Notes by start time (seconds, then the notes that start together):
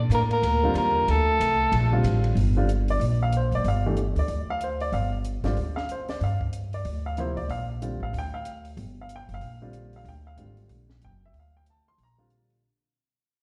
0.10 A2 A#3, hi-hat pedal, ride
0.14 A#4
0.31 A#3 A#4, ride
0.43 D2, ride
0.63 D3 G3 C4 F4
0.74 E2 A#3, hi-hat pedal, ride
0.78 A#4
1.08 D2 A3 A4, ride
1.40 C2, hi-hat pedal, ride
1.72 A#1, ride
1.92 D3 G3 C4 F4
2.03 A1, hi-hat pedal, ride
2.24 ride
2.35 G1, open hi-hat
2.56 D3 G3 C4 F4
2.69 closed hi-hat
2.88 D5, open hi-hat
3.00 A#1, open hi-hat
3.23 F5
3.32 closed hi-hat
3.37 C5
3.51 F#1 D5, open hi-hat
3.64 G1 F5, open hi-hat
3.86 E3 A3 D4 G4
3.97 closed hi-hat
4.15 D2 D5, open hi-hat
4.28 D2, open hi-hat
4.50 F5
4.61 C5, closed hi-hat
4.80 D5, open hi-hat
4.92 G1 F5, open hi-hat
5.25 closed hi-hat
5.44 G#1 D3 G3 C4 F4 D5, snare, open hi-hat
5.57 D2, open hi-hat
5.76 F5, snare
5.89 C5, closed hi-hat
6.09 D5, snare, open hi-hat
6.21 G2 F5, open hi-hat
6.41 kick
6.53 closed hi-hat
6.73 D5, open hi-hat
6.85 D2, open hi-hat
7.06 F5
7.17 C3 F3 A#3 E4 C5, closed hi-hat
7.37 D5, kick, open hi-hat
7.49 A#1 F5, open hi-hat
7.82 D3 G3 C4 F4, closed hi-hat
8.00 A1 F5
8.13 D2, open hi-hat
8.19 G5
8.34 F5
8.45 closed hi-hat
8.65 open hi-hat
8.77 G1, open hi-hat
9.01 F5
9.09 closed hi-hat
9.16 G5
9.29 F#1, open hi-hat
9.34 F5
9.41 A#1, open hi-hat
9.62 D3 G3 C4 F4
9.73 closed hi-hat
9.93 F5, open hi-hat
10.04 D2, open hi-hat
10.09 G5
10.27 F5
10.37 G#1 D3 G3 C4 F4, closed hi-hat
10.57 open hi-hat
10.69 A#1, open hi-hat
10.89 snare
11.02 F#1 G5, closed hi-hat
11.26 E5
11.33 D2, open hi-hat
11.39 F5
11.57 G5
11.66 A5, closed hi-hat
11.88 C6
11.98 A#1, open hi-hat
12.03 A#5
12.18 D3 G3 C4 F4
12.30 closed hi-hat
12.50 open hi-hat